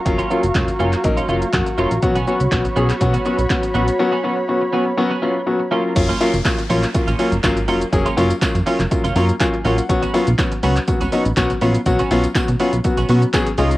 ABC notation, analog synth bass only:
X:1
M:4/4
L:1/16
Q:1/4=122
K:F#
V:1 name="Analog synth bass" clef=bass
F,,,2 z F,,, E,,,2 F,,,2 A,,,2 F,,,2 F,, z F,,, A,,, | B,,,3 C,, B,,,2 B,,,2 B,,2 z B,,, z2 A,,,2 | z16 | F,,,2 z F,,, z2 A,,,2 z A,,, z F,,, G,,,2 E,,,2 |
F,,,2 F,,,2 F,, F,, z F,,, z F,,, F,,2 z2 A,,,2 | B,,,2 z B,,, z2 C,,2 z C,, z A,,, B,,,2 A,,,2 | B,,,2 B,,,2 B,, B,, z B,,, z B,,, B,,2 z2 C,,2 |]